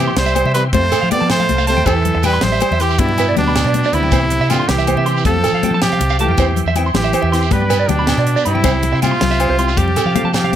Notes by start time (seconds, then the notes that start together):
Already playing: E3 G4 E5 G5 C6
0.00 G4
0.07 C6, shekere
0.17 C2 G3 C5, snare, closed hi-hat, low conga
0.25 E5, shekere
0.35 C5, closed hi-hat, high conga, low agogo
0.45 C3 E5, low conga
0.54 E3 G3 C4 E4 G4 B4 C6, closed hi-hat, low conga, shekere
0.73 F2 F3 A3 C4 G4 C5 F5 A5, kick, closed hi-hat, high conga
0.92 A4, closed hi-hat, low agogo, shekere
1.01 F3 F5
1.10 F3 A3 B3 C4 G4 D5 G5, closed hi-hat, high conga, low conga
1.20 F3 A5
1.30 A3 C5, snare, closed hi-hat, low agogo, shekere
1.40 F5, low conga
1.49 C2, closed hi-hat, high conga
1.58 F5, shekere
1.67 A3 C4 G4 C5 A5, muted steel-string acoustic guitar stroke, closed hi-hat
1.77 D#2 G5, low conga
1.84 E2 E3 E4 G4 A4 C5 E5 G5 C6, muted steel-string acoustic guitar stroke, kick, closed hi-hat, high conga, low agogo, shekere
1.88 E3
1.96 shekere
2.05 closed hi-hat, low conga
2.15 E2, muted clean electric guitar stroke, low conga
2.23 E3 G3 E4 G4 B4 G5, closed hi-hat, high conga, low agogo, shekere
2.33 C6, shekere
2.41 A1 G3 C5, snare, closed hi-hat, low conga
2.52 E5, shekere
2.60 C5, closed hi-hat, high conga, low agogo
2.71 E2 E5, low conga
2.79 E3 E4 G4 C6, muted steel-string acoustic guitar stroke, snare, closed hi-hat, low conga, shekere
2.90 low conga, shekere
2.98 G2 B2 B3 D4 E4 G4 D5 B5, kick, closed hi-hat, high conga, low conga
3.09 low conga
3.18 B4, closed hi-hat, low agogo, shekere
3.29 D5
3.36 D2 B2 B3 D4 G4 G5, closed hi-hat, high conga, low conga
3.47 B5, shekere
3.56 snare, closed hi-hat, low conga, low agogo, shekere
3.65 B2 D5, low conga
3.74 closed hi-hat, high conga
3.84 D5, shekere
3.93 D2 C3 B3 D4 E4 B5, muted steel-string acoustic guitar stroke, closed hi-hat
4.03 G5, low conga, shekere
4.11 C2 E3 C4 E4 G4 C5 E5 C6, kick, closed hi-hat, high conga, low agogo, shekere
4.30 closed hi-hat, low conga
4.41 C3 E5, shekere
4.49 D3 E3 C4 E4 F4 G4 G5, closed hi-hat, high conga, low agogo, shekere
4.60 C6, shekere
4.68 C2 E3 G4, snare, closed hi-hat, low conga
4.78 E5, shekere
4.87 C5, closed hi-hat, high conga, low agogo
4.96 C3 E5, low conga
5.06 E3 C4 E4 G4 C6, closed hi-hat, low conga, shekere
5.17 shekere
5.25 F2 F3 A3 C4 G4 A4 F5 G5 A5, kick, closed hi-hat, high conga
5.34 low conga
5.44 A4, closed hi-hat, low agogo, shekere
5.53 F3 F5, shekere
5.63 F3 A3 C4 G4 G5, closed hi-hat, high conga, low conga
5.71 F3 A5
5.81 C3 G4, snare, closed hi-hat, low agogo, shekere
5.92 F5, low conga
6.00 C2, closed hi-hat, high conga
6.09 F5, shekere
6.19 E3 F3 A3 G4 A5, closed hi-hat
6.29 F2 G5, low conga
6.38 E2 E3 C4 G4 C5 E5 C6, muted steel-string acoustic guitar stroke, kick, closed hi-hat, high conga, low agogo, shekere
6.56 closed hi-hat, low conga
6.66 E2 E5, shekere
6.76 E3 C4 E4 G5, closed hi-hat, high conga, low agogo
6.85 C6, shekere
6.94 A1 E3 G4, snare, closed hi-hat, low conga
7.03 E5, shekere
7.13 C5, closed hi-hat, high conga, low agogo
7.22 E2 E5, low conga
7.32 E3 C4 E4 G4 C6, snare, closed hi-hat, shekere
7.42 shekere
7.51 G2 G3 B3 D4 G4 B4 D5 B5, kick, closed hi-hat, high conga
7.61 low conga
7.70 B4, closed hi-hat, low agogo, shekere
7.79 D5, shekere
7.88 D2 B2 B3 D4 G4 G5, closed hi-hat, high conga, low conga
7.99 B5
8.07 snare, closed hi-hat, low agogo, shekere
8.18 B2 D5, low conga
8.27 closed hi-hat
8.36 D5, shekere
8.44 G2 C3 B3 D4 E4 G4 B5, closed hi-hat
8.55 G5, low conga
8.64 C2 G3 C4 E4 G4 C5 E5 C6, kick, closed hi-hat, high conga, low agogo, shekere
8.83 closed hi-hat, low conga
8.93 C3 E5, shekere
9.02 C3 G3 C4 E4 F4 G4 G5, closed hi-hat, high conga, low agogo, shekere
9.11 C6, shekere
9.21 C2, snare, closed hi-hat, low conga
9.30 E5, shekere
9.40 C5, closed hi-hat, low agogo
9.49 C2 C5
9.57 G3 C4 E4 G4 C6, closed hi-hat, low conga, shekere
9.68 shekere
9.76 F2 C3 G3 C4 F4 G4 F5 G5 A5, muted steel-string acoustic guitar stroke, kick, closed hi-hat, high conga
9.88 low conga
9.96 A4, closed hi-hat, low agogo, shekere
10.05 F3 F5, shekere
10.14 G3 C4 F4 A4 F5, closed hi-hat, high conga, low conga
10.24 F3 A5
10.34 C3 G4, snare, closed hi-hat, low agogo, shekere
10.43 F5, low conga
10.52 C2